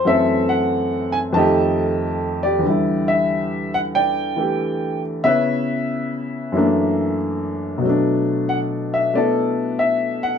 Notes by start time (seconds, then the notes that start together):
0.05 F#2 E3 A3 C4 A4 E5
0.49 F#5
1.12 G#5
1.33 F2 D#3 A3 D#5 A5
1.38 G4
2.43 G4 D5
2.59 E2 D3
2.66 G3 E4
3.08 E5
3.74 F#5
3.95 D5 G5
4.36 E3 A3 G4
5.24 C#3 B3 C#4 E4 B4 E5
6.52 F#2 E3 A3
6.57 A#3 D4
7.78 B2 F#3
7.86 A3 D4
8.49 F#5
8.94 E5
9.14 A3 B3 E4 A4 D5
9.79 E5
10.23 F#5